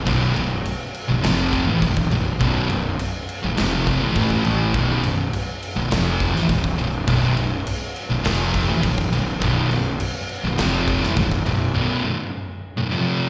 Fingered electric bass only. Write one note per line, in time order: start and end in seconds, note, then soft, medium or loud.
0.07 0.34 B0 medium
0.37 0.64 B0 medium
1.10 1.23 B0 medium
1.25 1.65 F1 medium
1.69 1.81 A1 medium
1.82 2.09 B0 medium
2.13 2.39 B0 medium
2.41 2.68 B0 medium
2.71 2.98 B0 medium
3.44 3.57 B0 medium
3.59 3.99 F1 medium
4.02 4.15 A1 medium
4.16 4.43 A1 medium
4.46 4.73 A1 medium
4.74 5.01 B0 loud
5.05 5.31 B0 medium
5.77 5.90 B0 medium
5.92 6.32 F1 loud
6.36 6.49 A1 medium
6.49 6.76 B0 medium
6.80 7.07 B0 medium
7.08 7.35 B0 loud
7.38 7.65 B0 medium
8.11 8.24 B0 medium
8.26 8.66 F1 medium
8.69 8.82 A1 medium
8.84 9.11 B0 medium
9.12 9.39 B0 medium
9.42 9.69 B0 medium
9.71 9.98 B0 medium
10.44 10.57 B0 medium
10.59 10.99 F1 medium
11.02 11.16 A1 medium
11.17 11.44 B0 medium
11.46 11.73 B0 medium